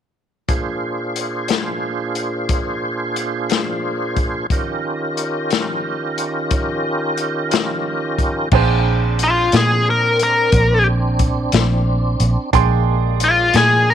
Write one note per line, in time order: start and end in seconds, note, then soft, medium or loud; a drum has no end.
0.48 4.47 A#2 soft
0.48 4.47 D4 soft
0.48 4.46 F4 soft
0.48 4.47 G#4 soft
0.48 4.46 C5 soft
0.48 kick medium
0.48 closed hi-hat medium
1.16 closed hi-hat soft
1.48 snare medium
1.48 closed hi-hat medium
2.15 closed hi-hat soft
2.49 kick medium
2.49 closed hi-hat medium
3.16 closed hi-hat soft
3.50 snare medium
3.50 closed hi-hat medium
4.16 kick medium
4.16 closed hi-hat soft
4.50 8.49 D#3 medium
4.50 8.49 C#4 soft
4.50 8.49 F4 soft
4.50 8.49 G4 soft
4.50 8.49 A#4 medium
4.50 kick medium
4.50 closed hi-hat medium
5.17 closed hi-hat soft
5.50 snare medium
5.50 closed hi-hat medium
6.18 closed hi-hat soft
6.51 kick medium
6.51 closed hi-hat medium
7.17 closed hi-hat soft
7.51 snare medium
7.51 closed hi-hat medium
8.18 kick medium
8.18 closed hi-hat soft
8.52 9.48 A#1 medium
8.52 12.50 C4 medium
8.52 12.50 D4 medium
8.52 12.51 G#4 medium
8.52 12.51 C5 medium
8.52 12.50 G5 soft
8.52 kick loud
8.52 crash medium
9.19 closed hi-hat medium
9.24 9.54 F4 medium
9.52 10.49 A#2 medium
9.52 snare medium
9.52 closed hi-hat medium
9.56 9.87 G#4 medium
9.90 10.21 A#4 medium
10.19 closed hi-hat soft
10.23 10.86 A#4 medium
10.52 11.49 A#1 medium
10.52 kick medium
10.52 closed hi-hat medium
11.19 kick medium
11.19 closed hi-hat medium
11.52 12.16 A#1 medium
11.52 snare loud
11.52 closed hi-hat medium
12.20 12.35 A#1 medium
12.20 closed hi-hat medium
12.53 13.50 A#1 medium
12.53 13.94 G#3 medium
12.53 13.94 A#3 medium
12.53 13.94 D4 medium
12.53 13.94 G#4 medium
12.53 13.94 G5 medium
12.53 13.94 C6 medium
12.53 kick loud
12.53 closed hi-hat medium
13.20 13.55 F4 medium
13.20 closed hi-hat medium
13.54 13.94 A#2 medium
13.54 13.88 G#4 medium
13.54 snare medium
13.54 closed hi-hat medium
13.90 13.94 A#4 medium